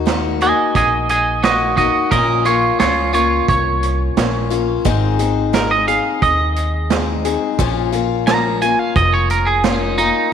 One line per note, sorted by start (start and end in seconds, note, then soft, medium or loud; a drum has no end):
0.00 0.51 D#2 medium
0.06 0.41 D#3 medium
0.06 0.41 A#3 medium
0.06 0.41 D#4 medium
0.06 0.40 F#4 medium
0.06 snare loud
0.06 closed hi-hat medium
0.41 1.43 A#3 soft
0.41 1.44 D#4 soft
0.41 1.44 F#4 medium
0.41 0.75 D#5 medium
0.41 0.75 G#5 medium
0.41 closed hi-hat medium
0.75 1.88 A#1 medium
0.75 1.08 D#5 medium
0.75 1.09 G#5 medium
0.75 kick loud
0.75 closed hi-hat medium
1.09 1.42 D#5 medium
1.09 1.43 G#5 medium
1.09 closed hi-hat medium
1.43 1.78 D#3 medium
1.43 1.78 A#3 medium
1.43 1.77 D#4 medium
1.43 1.76 F#4 medium
1.43 1.76 D#5 medium
1.43 snare loud
1.43 closed hi-hat medium
1.77 2.11 A#3 soft
1.77 2.12 D#4 soft
1.77 2.09 F#4 medium
1.77 2.12 F#4 medium
1.77 2.11 D#5 medium
1.77 kick medium
1.77 closed hi-hat medium
2.11 2.68 A#1 medium
2.11 2.46 A#2 medium
2.11 2.46 F3 medium
2.11 2.46 A#3 medium
2.11 2.45 C#4 medium
2.11 2.44 F4 medium
2.11 2.43 A#4 medium
2.11 2.45 D#5 medium
2.11 kick loud
2.11 closed hi-hat medium
2.45 2.79 A#3 soft
2.45 2.80 C#4 soft
2.45 2.80 F4 medium
2.45 2.78 F4 medium
2.45 2.79 C#5 medium
2.45 closed hi-hat medium
2.80 3.38 C#2 medium
2.80 3.14 F3 medium
2.80 3.14 A#3 medium
2.80 3.13 C#4 medium
2.80 3.12 F4 medium
2.80 3.13 C#5 medium
2.80 snare loud
2.80 closed hi-hat medium
3.13 4.17 A#3 soft
3.13 4.17 C#4 soft
3.13 4.17 F4 soft
3.13 3.46 F4 medium
3.13 3.48 C#5 medium
3.13 closed hi-hat medium
3.48 4.07 C2 medium
3.48 4.82 C#5 medium
3.48 kick loud
3.48 closed hi-hat medium
3.83 closed hi-hat medium
4.17 4.75 A#1 medium
4.17 4.51 F3 medium
4.17 4.52 A#3 medium
4.17 4.51 C#4 medium
4.17 4.49 F4 medium
4.17 snare loud
4.17 closed hi-hat medium
4.50 4.86 A#3 soft
4.50 4.86 C#4 medium
4.50 4.85 F4 medium
4.50 closed hi-hat medium
4.85 5.98 G#1 medium
4.85 5.20 G#2 medium
4.85 5.20 D#3 medium
4.85 5.20 G#3 medium
4.85 5.20 C4 loud
4.85 5.19 D#4 medium
4.85 5.18 G#4 loud
4.85 kick loud
4.85 closed hi-hat medium
5.19 5.52 G#3 soft
5.19 5.53 C4 soft
5.19 5.54 D#4 medium
5.19 5.54 G#4 medium
5.19 closed hi-hat medium
5.53 5.88 G#3 medium
5.53 5.88 C4 medium
5.53 5.88 D#4 medium
5.53 5.87 G#4 medium
5.53 5.71 A#4 loud
5.53 snare loud
5.53 closed hi-hat medium
5.71 5.87 D#5 medium
5.88 6.89 G#3 soft
5.88 6.90 C4 soft
5.88 6.91 D#4 medium
5.88 6.91 G#4 medium
5.88 6.21 F5 medium
5.88 closed hi-hat medium
6.22 7.35 D#2 medium
6.22 6.89 D#5 loud
6.22 kick loud
6.22 closed hi-hat medium
6.56 closed hi-hat medium
6.90 7.25 G#3 medium
6.90 7.25 C4 medium
6.90 7.24 D#4 medium
6.90 7.24 G#4 medium
6.90 snare loud
6.90 closed hi-hat medium
7.25 7.59 G#3 medium
7.25 7.60 C4 medium
7.25 7.59 D#4 medium
7.25 7.59 G#4 medium
7.25 closed hi-hat medium
7.59 8.72 A#1 medium
7.59 7.93 A#2 medium
7.59 7.94 F3 medium
7.59 7.94 A#3 loud
7.59 7.93 C#4 loud
7.59 7.91 F4 medium
7.59 kick loud
7.59 closed hi-hat medium
7.92 8.26 A#3 medium
7.92 8.27 C#4 medium
7.92 8.27 F4 medium
7.92 closed hi-hat medium
8.27 8.61 F3 medium
8.27 8.62 A#3 medium
8.27 8.62 C#4 medium
8.27 8.60 F4 medium
8.27 8.60 A#5 loud
8.27 snare loud
8.27 closed hi-hat medium
8.62 9.64 A#3 soft
8.62 9.65 C#4 medium
8.62 9.64 F4 medium
8.62 8.79 G#5 medium
8.62 closed hi-hat medium
8.79 8.96 F5 medium
8.96 10.08 F1 medium
8.96 9.13 D#5 medium
8.96 kick loud
8.96 closed hi-hat medium
9.14 9.30 C#5 medium
9.30 9.47 A#4 loud
9.30 closed hi-hat medium
9.47 9.64 G#4 medium
9.64 9.98 F3 medium
9.64 9.99 A#3 medium
9.64 9.98 C#4 medium
9.64 9.81 F4 medium
9.64 9.97 F4 medium
9.64 snare loud
9.64 closed hi-hat medium
9.81 9.97 D#4 medium
9.98 10.33 A#3 soft
9.98 10.33 C#4 soft
9.98 10.33 D#4 loud
9.98 10.32 F4 medium
9.98 closed hi-hat medium